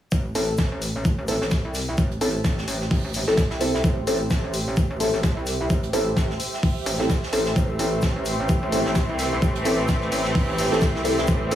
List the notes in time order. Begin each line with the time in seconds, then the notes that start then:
0.12 A1 G4, kick, shaker
0.35 A1 C4 E4 A4, open hi-hat, shaker
0.58 kick, snare, shaker
0.67 C5
0.72 A1
0.82 open hi-hat, shaker
1.05 kick, shaker
1.18 A1
1.28 C4 E4 A4, open hi-hat, shaker
1.42 A1, snare
1.51 kick, snare, shaker
1.58 E5
1.65 C2
1.74 snare, open hi-hat, shaker
1.98 A1, kick, shaker
2.11 closed hi-hat
2.21 A1 C4 E4 A4, open hi-hat, shaker
2.44 kick, snare, shaker
2.59 snare
2.68 A1, open hi-hat, shaker
2.82 snare
2.91 kick, open hi-hat
3.04 A1
3.14 open hi-hat, shaker
3.28 A1 C4 E4 A4, snare
3.37 kick, snare, shaker
3.50 C2, snare
3.61 C4 E4 A4, open hi-hat, shaker
3.75 snare
3.84 A1, kick, shaker
4.07 A1 C4 E4 A4, open hi-hat, shaker
4.30 kick, snare, shaker
4.44 A1
4.54 open hi-hat, shaker
4.77 kick, shaker
4.90 A1
5.00 C4 E4 A4, open hi-hat, shaker
5.14 A1, snare
5.23 kick, snare, shaker
5.37 C2
5.46 snare, open hi-hat, shaker
5.70 A1, kick, shaker
5.83 closed hi-hat
5.93 A1 C4 E4 A4, open hi-hat, shaker
6.17 kick, snare, shaker
6.31 snare
6.40 open hi-hat, shaker
6.54 snare
6.63 kick, open hi-hat
6.86 A1, open hi-hat, shaker
7.00 C4 E4 A4, snare
7.10 kick, snare, shaker
7.23 snare
7.33 A1 C4 E4 A4, open hi-hat, shaker
7.46 snare
7.56 A1 E3 A3 C4, kick, shaker
7.79 A1 C4 E4 A4, open hi-hat, shaker
8.02 kick, snare, shaker
8.16 A1
8.25 open hi-hat, shaker
8.49 kick, shaker
8.63 A1
8.72 C4 E4 A4, open hi-hat, shaker
8.86 A1, snare
8.95 kick, snare, shaker
9.09 C2
9.19 snare, open hi-hat, shaker
9.42 A1, kick, shaker
9.55 closed hi-hat
9.65 A1 C4 E4 A4, open hi-hat, shaker
9.88 kick, snare, shaker
10.02 snare
10.12 A1, open hi-hat, shaker
10.25 snare
10.35 kick, open hi-hat
10.49 A1
10.58 open hi-hat, shaker
10.72 A1 C4 E4 A4, snare
10.81 kick, snare, shaker
10.95 C2, snare
11.05 C4 E4 A4, open hi-hat, shaker
11.18 snare
11.27 A1 G3, kick, riser, shaker
11.51 A1 C4 E4 A4, open hi-hat, shaker